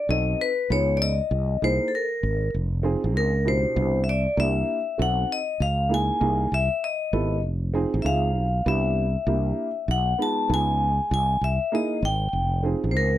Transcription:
0.09 0.33 B1 medium
0.09 0.48 C4 medium
0.09 0.48 D#4 soft
0.09 0.48 F#4 medium
0.09 0.48 A4 medium
0.09 0.41 D#5 loud
0.41 0.69 B4 medium
0.70 1.19 C#2 medium
0.70 1.09 B3 medium
0.70 1.09 D#4 medium
0.70 1.09 F4 medium
0.70 1.09 G#4 medium
0.70 0.97 C#5 medium
0.97 1.01 D5 medium
1.02 1.64 D#5 loud
1.31 1.56 C2 loud
1.62 1.78 C2 medium
1.62 1.86 A#3 medium
1.62 1.86 D#4 medium
1.62 1.86 E4 medium
1.62 1.87 G#4 medium
1.62 1.89 C5 medium
1.88 1.93 A4 medium
1.95 2.51 A#4 medium
2.23 2.48 G#1 medium
2.54 2.95 F1 medium
2.83 3.30 C4 medium
2.83 3.31 D#4 medium
2.83 3.31 F4 medium
2.83 3.31 G#4 medium
3.04 3.15 A1 medium
3.15 3.64 C#2 medium
3.15 3.47 A#4 medium
3.45 3.84 B2 medium
3.45 3.74 D4 medium
3.45 3.74 E4 medium
3.45 3.75 G4 medium
3.45 3.99 C5 medium
3.76 4.25 C2 loud
3.76 4.00 B3 medium
3.76 4.00 D4 medium
3.76 4.00 E4 medium
3.76 4.00 G4 medium
4.04 4.08 E5 medium
4.09 4.40 D5 medium
4.37 4.62 C2 loud
4.37 4.76 A#3 medium
4.37 4.76 D4 medium
4.37 4.76 E4 medium
4.37 4.76 G4 medium
4.37 5.02 E5 medium
4.98 5.24 B1 medium
4.98 5.37 C4 medium
4.98 5.37 D#4 medium
4.98 5.37 F#4 medium
4.98 5.37 A4 medium
4.98 5.32 F#5 medium
5.32 5.62 D#5 medium
5.60 6.09 C#2 loud
5.60 5.92 F5 loud
5.89 6.19 A#3 medium
5.89 6.19 D#4 medium
5.89 6.20 E4 medium
5.89 6.20 G#4 medium
5.94 6.49 G#5 loud
6.21 6.46 C2 loud
6.21 6.45 A#3 medium
6.21 6.45 D#4 medium
6.21 6.45 E4 medium
6.21 6.45 G#4 medium
6.52 6.68 C2 loud
6.52 6.84 E5 loud
6.84 7.40 D#5 medium
7.13 7.44 G#1 medium
7.13 7.37 B3 medium
7.13 7.37 E4 medium
7.13 7.37 G4 medium
7.13 7.37 A4 medium
7.44 7.84 F1 loud
7.74 8.03 C4 medium
7.74 8.03 D#4 medium
7.74 8.03 F4 medium
7.74 8.04 G#4 medium
7.94 8.02 A1 medium
8.02 8.36 C#2 medium
8.02 8.43 C4 medium
8.02 8.43 D#4 medium
8.02 8.43 F4 medium
8.02 8.44 G#4 medium
8.02 8.06 E5 medium
8.02 8.68 F5 medium
8.36 8.60 B1 medium
8.66 9.15 C2 loud
8.66 9.04 B3 medium
8.66 9.05 D4 medium
8.66 9.05 E4 medium
8.66 9.05 G4 medium
8.66 9.93 E5 medium
9.27 9.51 C2 loud
9.27 9.66 A#3 medium
9.27 9.66 D4 medium
9.27 9.66 E4 medium
9.27 9.66 G4 medium
9.88 10.13 B1 loud
9.88 10.21 F#5 medium
10.18 11.07 G#3 medium
10.18 10.47 B3 medium
10.18 10.48 D#4 medium
10.18 10.48 F4 medium
10.18 10.52 A5 medium
10.49 10.99 C#2 medium
10.49 10.88 B3 medium
10.49 10.88 D#4 medium
10.49 10.88 F4 medium
10.49 10.88 G#4 medium
10.54 11.12 G#5 loud
11.11 11.36 C2 loud
11.11 11.44 G#5 medium
11.41 11.57 C2 medium
11.41 11.74 E5 medium
11.72 11.96 A#3 medium
11.72 11.97 D#4 medium
11.72 11.97 E4 medium
11.72 11.97 G#4 medium
11.72 12.05 D#5 medium
12.03 12.27 G#1 loud
12.03 12.61 G5 medium
12.33 12.74 F1 medium
12.63 13.10 C4 medium
12.63 13.10 D#4 medium
12.63 13.11 F4 medium
12.63 13.11 G#4 medium
12.84 12.94 A1 medium
12.91 13.18 C#2 medium
12.91 12.95 C5 medium
12.97 13.18 A#4 medium

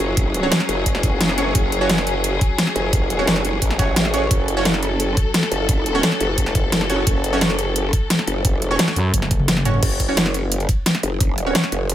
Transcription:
0.00 0.50 F#1 medium
0.00 9.79 F#3 medium
0.00 9.79 C#4 medium
0.00 4.29 G#4 medium
0.17 kick loud
0.17 closed hi-hat medium
0.34 closed hi-hat medium
0.43 0.57 C#4 medium
0.43 0.56 F#4 medium
0.43 0.57 C#5 loud
0.52 snare loud
0.52 closed hi-hat loud
0.60 snare soft
0.69 1.54 F#1 loud
0.69 closed hi-hat medium
0.86 kick medium
0.86 closed hi-hat medium
0.95 snare soft
1.03 kick loud
1.03 closed hi-hat medium
1.21 snare loud
1.21 closed hi-hat medium
1.29 snare soft
1.38 1.51 C#4 medium
1.38 1.51 F#4 medium
1.38 1.51 C#5 medium
1.38 closed hi-hat medium
1.55 2.40 F#1 loud
1.55 kick loud
1.55 closed hi-hat medium
1.72 closed hi-hat medium
1.81 1.89 C#4 medium
1.81 1.89 F#4 medium
1.81 1.89 C#5 loud
1.90 snare loud
1.90 closed hi-hat medium
1.98 snare soft
2.07 closed hi-hat medium
2.24 closed hi-hat medium
2.41 kick loud
2.41 closed hi-hat medium
2.58 snare loud
2.58 closed hi-hat medium
2.67 snare soft
2.76 3.26 F#1 loud
2.76 closed hi-hat medium
2.93 kick loud
2.93 closed hi-hat medium
3.10 closed hi-hat medium
3.19 3.32 C#4 medium
3.19 3.32 F#4 medium
3.19 3.32 C#5 loud
3.27 3.43 F#1 loud
3.27 snare loud
3.27 closed hi-hat medium
3.36 snare soft
3.45 3.60 F#1 loud
3.45 closed hi-hat medium
3.62 4.29 A1 loud
3.62 kick medium
3.62 closed hi-hat medium
3.71 snare soft
3.79 3.93 C#4 medium
3.79 3.93 F#4 medium
3.79 3.93 C#5 medium
3.79 kick loud
3.79 closed hi-hat medium
3.96 snare loud
3.96 closed hi-hat medium
4.05 snare soft
4.14 4.27 C#4 medium
4.14 4.27 F#4 medium
4.14 4.27 C#5 loud
4.14 closed hi-hat medium
4.31 5.16 F#1 loud
4.31 9.80 A4 medium
4.31 kick loud
4.31 closed hi-hat medium
4.48 closed hi-hat medium
4.57 4.65 C#4 medium
4.57 4.65 F#4 medium
4.57 4.65 C#5 loud
4.65 snare loud
4.65 closed hi-hat medium
4.74 snare soft
4.83 closed hi-hat medium
5.00 closed hi-hat medium
5.17 kick loud
5.17 closed hi-hat medium
5.34 snare loud
5.34 closed hi-hat medium
5.43 snare soft
5.52 6.02 F#1 loud
5.52 closed hi-hat medium
5.69 kick loud
5.69 closed hi-hat medium
5.86 closed hi-hat medium
5.95 6.08 C#4 medium
5.95 6.08 F#4 medium
5.95 6.08 C#5 loud
6.03 snare loud
6.03 closed hi-hat medium
6.12 snare soft
6.21 7.05 F#1 loud
6.21 closed hi-hat medium
6.38 kick medium
6.38 closed hi-hat medium
6.46 snare soft
6.55 kick loud
6.55 closed hi-hat medium
6.72 snare loud
6.72 closed hi-hat loud
6.81 snare soft
6.90 7.03 C#4 medium
6.90 7.03 F#4 medium
6.90 7.03 C#5 medium
6.90 closed hi-hat medium
7.07 7.92 F#1 loud
7.07 kick loud
7.07 closed hi-hat medium
7.24 closed hi-hat medium
7.33 7.41 C#4 medium
7.33 7.41 F#4 medium
7.33 7.41 C#5 loud
7.41 snare loud
7.41 closed hi-hat loud
7.50 snare soft
7.59 closed hi-hat medium
7.76 closed hi-hat loud
7.93 kick loud
7.93 closed hi-hat medium
8.10 snare loud
8.10 closed hi-hat loud
8.19 snare soft
8.27 8.78 F#1 medium
8.27 closed hi-hat medium
8.45 kick loud
8.45 closed hi-hat loud
8.62 closed hi-hat medium
8.71 8.84 C#4 medium
8.71 8.84 F#4 medium
8.71 8.84 C#5 loud
8.79 snare loud
8.79 closed hi-hat loud
8.88 snare soft
8.96 9.12 F#2 loud
8.96 closed hi-hat medium
9.14 9.81 F#1 medium
9.14 kick medium
9.14 closed hi-hat loud
9.14 high tom medium
9.22 snare soft
9.22 high tom medium
9.31 kick loud
9.31 closed hi-hat medium
9.40 mid tom medium
9.48 snare loud
9.48 closed hi-hat loud
9.48 mid tom medium
9.57 snare soft
9.65 9.79 C#4 medium
9.65 9.79 F#4 medium
9.65 9.79 C#5 medium
9.65 closed hi-hat medium
9.65 mid tom loud
9.74 mid tom medium
9.83 10.67 F#1 loud
9.83 kick loud
9.83 closed hi-hat loud
9.83 crash loud
10.00 kick medium
10.00 closed hi-hat medium
10.08 10.17 C#4 medium
10.08 10.17 F#4 medium
10.08 10.17 C#5 loud
10.17 snare loud
10.17 closed hi-hat loud
10.26 snare medium
10.34 closed hi-hat medium
10.52 closed hi-hat loud
10.60 closed hi-hat soft
10.69 kick loud
10.69 closed hi-hat medium
10.86 snare loud
10.86 closed hi-hat loud
10.95 snare medium
10.95 closed hi-hat soft
11.03 11.54 F#1 loud
11.03 closed hi-hat medium
11.21 kick loud
11.21 closed hi-hat medium
11.38 closed hi-hat medium
11.46 11.60 C#4 medium
11.46 11.60 F#4 medium
11.46 11.60 C#5 loud
11.55 snare loud
11.55 closed hi-hat loud
11.64 snare soft
11.72 11.95 F#1 loud
11.72 closed hi-hat medium
11.90 closed hi-hat medium

